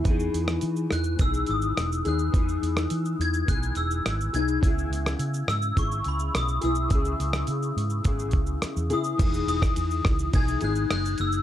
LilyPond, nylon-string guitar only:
\new Staff \with { instrumentName = "Nylon-string guitar" } { \time 4/4 \key e \major \tempo 4 = 105 <e b dis' gis'>2 <e b dis' gis'>4. <b dis' gis'>8 | <e b dis' gis'>2 <e b dis' gis'>4. <b dis' gis'>8 | <cis b e' gis'>2 <cis b e' gis'>4. <b e' gis'>8 | <cis b e' gis'>2 <cis b e' gis'>4. <b e' gis'>8 |
<e b dis' gis'>2 <e b dis' gis'>8 <b dis' gis'>4. | }